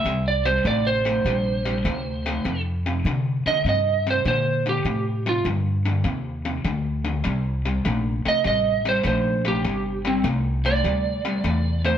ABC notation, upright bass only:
X:1
M:4/4
L:1/8
Q:"Swing" 1/4=100
K:F
V:1 name="Upright bass" clef=bass
C,,2 A,,,2 B,,,2 D,,2 | F,,2 C, z G,,2 B,,2 | A,,2 G,,2 _E,,2 D,,2 | C,,2 B,,, z A,,,2 B,,,2 |
G,,,2 C,,2 D,,2 E,,2 |]